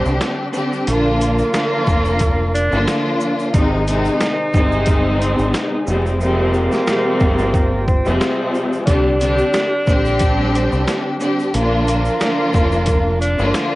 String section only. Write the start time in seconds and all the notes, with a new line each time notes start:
Already playing: D3 G3 C4 D4 G4
0.52 D3 G3 C4 D4 G4
0.87 D3 F3 A#3 D4 F4
1.53 D3 F3 A#3 D4 F4
2.72 D3 F3 A#3 D4 F4
3.54 C3 D#3 G#3 C4 D#4
3.86 C3 D#3 G#3 C4 D#4
4.53 C3 D#3 G#3 C4 D#4
5.86 C3 F3 G3 G#3 C4
6.19 C3 F3 G3 G#3 C4
6.86 C3 F3 G3 G#3 C4
8.05 C3 F3 G3 G#3 C4
8.86 D3 G3 C4 D4 G4
9.19 D3 G3 C4 D4 G4
9.87 D3 G3 C4 D4 G4
11.19 D3 G3 C4 D4 G4
11.54 D3 F3 A#3 D4 F4
12.19 D3 F3 A#3 D4 F4
13.38 D3 F3 A#3 D4 F4